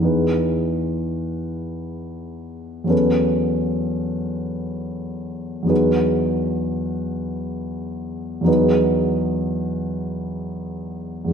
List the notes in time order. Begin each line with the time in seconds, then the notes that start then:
0.00 E2 E3 D#4 G#4
0.05 B4
2.84 E2 F#3 C#4
2.89 A4 B4
5.63 E2 F#3 D#4
5.68 G#4 B4
8.41 E2 F#3 D#4
8.46 G#4 B4
11.25 E2 G#3